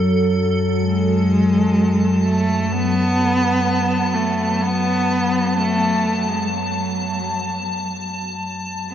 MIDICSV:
0, 0, Header, 1, 4, 480
1, 0, Start_track
1, 0, Key_signature, 3, "minor"
1, 0, Tempo, 500000
1, 8587, End_track
2, 0, Start_track
2, 0, Title_t, "Ambient pad"
2, 0, Program_c, 0, 92
2, 0, Note_on_c, 0, 69, 72
2, 754, Note_on_c, 0, 81, 80
2, 789, Note_off_c, 0, 69, 0
2, 8587, Note_off_c, 0, 81, 0
2, 8587, End_track
3, 0, Start_track
3, 0, Title_t, "Cello"
3, 0, Program_c, 1, 42
3, 768, Note_on_c, 1, 56, 89
3, 2156, Note_on_c, 1, 57, 92
3, 2170, Note_off_c, 1, 56, 0
3, 2609, Note_on_c, 1, 59, 107
3, 2623, Note_off_c, 1, 57, 0
3, 3968, Note_on_c, 1, 57, 88
3, 3983, Note_off_c, 1, 59, 0
3, 4431, Note_on_c, 1, 59, 101
3, 4446, Note_off_c, 1, 57, 0
3, 5347, Note_on_c, 1, 57, 86
3, 5362, Note_off_c, 1, 59, 0
3, 6034, Note_on_c, 1, 56, 76
3, 6048, Note_off_c, 1, 57, 0
3, 6256, Note_off_c, 1, 56, 0
3, 6271, Note_on_c, 1, 54, 78
3, 7593, Note_off_c, 1, 54, 0
3, 8550, Note_on_c, 1, 59, 103
3, 8587, Note_off_c, 1, 59, 0
3, 8587, End_track
4, 0, Start_track
4, 0, Title_t, "Synth drone"
4, 0, Program_c, 2, 95
4, 0, Note_on_c, 2, 42, 65
4, 0, Note_on_c, 2, 54, 69
4, 8587, Note_off_c, 2, 42, 0
4, 8587, Note_off_c, 2, 54, 0
4, 8587, End_track
0, 0, End_of_file